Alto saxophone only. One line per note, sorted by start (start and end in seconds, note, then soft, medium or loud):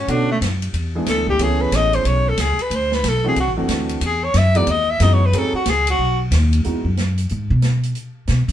0.00 0.12 C#4 medium
0.10 0.30 D4 medium
0.31 0.38 A3 medium
1.09 1.28 A4 medium
1.29 1.44 G4 medium
1.43 1.63 G#4 medium
1.61 1.77 B4 medium
1.75 1.96 D#5 loud
1.95 2.09 C5 medium
2.07 2.30 C#5 medium
2.29 2.43 A4 medium
2.41 2.63 G#4 medium
2.62 2.77 B4 medium
2.75 2.96 C5 medium
2.94 3.10 B4 medium
3.08 3.27 A4 medium
3.28 3.37 G#4 medium
3.40 3.52 F#4 medium
4.06 4.26 G#4 medium
4.24 4.39 C#5 loud
4.38 4.58 E5 loud
4.57 4.72 D5 loud
4.71 4.92 D#5 medium
4.90 5.04 E5 loud
5.03 5.15 D#5 medium
5.14 5.27 C#5 medium
5.26 5.40 B4 medium
5.39 5.55 A4 medium
5.55 5.71 F#4 medium
5.69 5.88 G#4 loud
5.90 6.19 F#4 medium